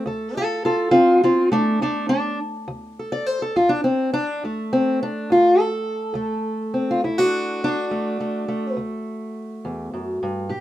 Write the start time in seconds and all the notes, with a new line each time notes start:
Already playing: A3
0.06 D2 A4
0.37 F4 A4
0.65 F4 A4
0.91 D2 C4 F4
1.24 C4 F4
1.52 A3 D4
1.82 D2 A3 D4
2.09 D4
2.68 D2
2.99 A4
3.12 D5
3.26 C5
3.42 A4
3.56 D2 F4
3.69 D4
3.84 C4
4.14 D4
4.44 D2 A3
4.73 C4
5.03 D4
5.30 D2 F4
5.60 A4
6.14 D2 A3
6.74 C4
6.91 F4
7.04 D2 E4
7.18 D4 F#4
7.64 D4
7.91 D2 A3
8.20 A3
8.48 A3
8.77 D2
9.65 E2
9.93 F#2
10.23 G2
10.49 A2 G4